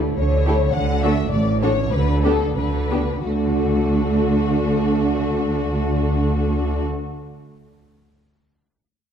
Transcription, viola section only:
0.46 0.54 A3 soft
0.46 0.54 E4 soft
1.04 1.13 A3 soft
1.04 1.12 D4 soft
1.64 1.72 A3 soft
1.64 1.72 D4 soft
2.24 2.33 B3 soft
2.24 2.32 D4 soft
2.92 3.00 B3 soft
2.92 3.00 D4 soft
3.26 6.83 A3 soft

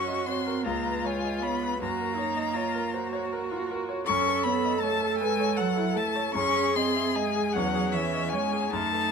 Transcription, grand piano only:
0.00 0.61 F#2 medium
0.00 0.47 A#4 medium
0.00 0.19 C#5 medium
0.08 0.27 D#5 medium
0.28 0.58 C#5 medium
0.47 0.65 A#4 medium
0.66 1.77 C#2 medium
0.86 1.16 B4 medium
1.05 1.35 C#5 medium
1.24 1.43 D#5 soft
1.42 1.73 C#5 medium
1.63 1.81 B4 medium
1.82 4.03 F#2 medium
2.01 2.30 A#4 medium
2.18 2.48 C#5 medium
2.37 2.55 D#5 medium
2.56 2.86 C#5 medium
2.75 3.05 A#4 medium
2.94 3.12 C5 medium
3.13 3.43 C#5 medium
3.33 3.62 A#4 medium
3.52 3.81 F4 medium
3.71 4.00 A#4 medium
3.89 4.07 C#5 medium
4.09 6.32 F#2 medium
4.28 4.56 A4 medium
4.46 4.75 C#5 medium
4.65 4.82 D#5 medium
4.83 5.12 C#5 medium
5.00 5.31 A4 medium
5.21 5.39 B4 medium
5.40 5.70 C#5 medium
5.58 5.88 A4 medium
5.76 6.07 E4 medium
5.95 6.27 A4 medium
6.16 6.35 C#5 medium
6.35 7.51 F#2 medium
6.56 6.88 G#4 medium
6.77 7.08 D#5 medium
6.96 7.15 E5 medium
7.16 7.47 D#5 medium
7.36 7.55 G#4 medium
7.56 8.70 E2 medium
7.74 8.05 G#4 medium
7.94 8.25 C#5 medium
8.14 8.33 D#5 medium
8.33 8.65 C#5 medium
8.53 8.73 G#4 medium
8.73 9.12 F#2 medium
8.93 9.12 A4 medium

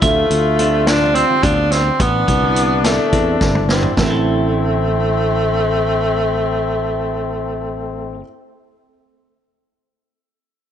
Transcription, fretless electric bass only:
0.02 0.25 D2 medium
0.31 1.22 D2 medium
1.44 1.89 D2 medium
2.00 2.23 A1 medium
2.28 2.97 C2 medium
3.13 3.36 E2 medium
3.41 3.87 G1 medium
3.98 8.22 A1 medium

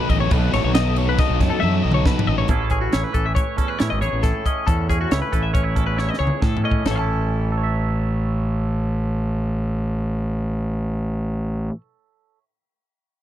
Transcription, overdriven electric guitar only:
0.00 0.28 B2 loud
0.00 0.29 D#3 medium
0.00 0.11 F#3 loud
0.09 0.29 F#3 medium
0.09 0.30 B3 medium
0.09 0.30 D#4 medium
0.09 0.30 A4 medium
0.29 0.73 B2 loud
0.29 0.73 D#3 medium
0.29 0.54 F#3 medium
0.29 0.53 B3 medium
0.29 0.52 D#4 loud
0.29 0.50 A4 loud
0.52 0.74 F#3 medium
0.52 0.74 B3 medium
0.52 0.75 D#4 medium
0.52 0.75 A4 medium
0.74 1.18 B2 medium
0.74 1.18 D#3 medium
0.74 0.96 F#3 medium
0.74 0.96 B3 loud
0.74 0.95 D#4 loud
0.74 0.94 A4 loud
0.95 1.60 F#3 medium
0.95 1.61 B3 medium
0.95 1.63 D#4 medium
0.95 1.63 A4 medium
1.61 1.84 F#3 medium
1.61 1.84 B3 medium
1.61 1.83 D#4 medium
1.61 1.82 A4 medium
1.83 2.06 F#3 medium
1.83 2.05 B3 medium
1.83 2.06 D#4 medium
1.83 2.06 A4 medium
2.06 2.48 B2 loud
2.06 2.48 D#3 loud
2.06 2.30 F#3 loud
2.06 2.29 B3 loud
2.06 2.28 D#4 loud
2.06 2.27 A4 loud
2.29 2.49 F#3 medium
2.29 2.49 B3 medium
2.29 2.49 D#4 medium
2.29 2.48 A4 medium

